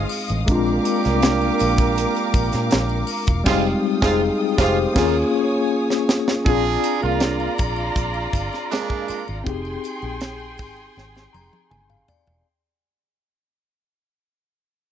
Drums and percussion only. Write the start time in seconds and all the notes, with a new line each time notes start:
0.09 open hi-hat, triangle
0.28 closed hi-hat, muted triangle
0.48 kick, closed hi-hat, muted triangle
0.67 muted triangle
0.85 closed hi-hat, triangle
1.04 snare, closed hi-hat, muted triangle
1.22 snare, closed hi-hat, muted triangle
1.42 muted triangle
1.59 closed hi-hat, triangle
1.78 kick, closed hi-hat, muted triangle
1.96 closed hi-hat, muted triangle
2.15 closed hi-hat, muted triangle
2.34 kick, closed hi-hat, triangle
2.52 snare, closed hi-hat, muted triangle
2.71 snare, closed hi-hat, muted triangle
2.89 muted triangle
3.07 open hi-hat, triangle
3.27 kick, closed hi-hat, muted triangle
3.46 kick, snare, crash
4.02 kick, snare
4.58 kick, snare
4.96 kick, snare, crash
5.90 snare
6.09 snare
6.28 snare
6.46 kick, closed hi-hat, muted triangle
6.65 muted triangle
6.84 closed hi-hat, triangle
7.03 muted triangle
7.20 snare, closed hi-hat, muted triangle
7.40 muted triangle
7.58 kick, closed hi-hat, triangle
7.76 muted triangle
7.95 kick, closed hi-hat, muted triangle
8.14 muted triangle
8.33 kick, closed hi-hat, triangle
8.53 snare, muted triangle
8.71 snare, closed hi-hat, muted triangle
8.89 kick, muted triangle
9.08 closed hi-hat, triangle
9.28 muted triangle
9.46 kick, closed hi-hat, muted triangle
9.65 muted triangle
9.84 closed hi-hat, triangle
10.02 muted triangle
10.21 snare, closed hi-hat, muted triangle
10.40 muted triangle
10.58 kick, open hi-hat, triangle
10.77 muted triangle
10.96 snare, muted triangle
11.16 snare, muted triangle
11.34 high tom, triangle
11.53 high tom, muted triangle
11.71 mid tom, muted triangle
11.90 mid tom, muted triangle
12.08 floor tom, triangle
12.27 floor tom, muted triangle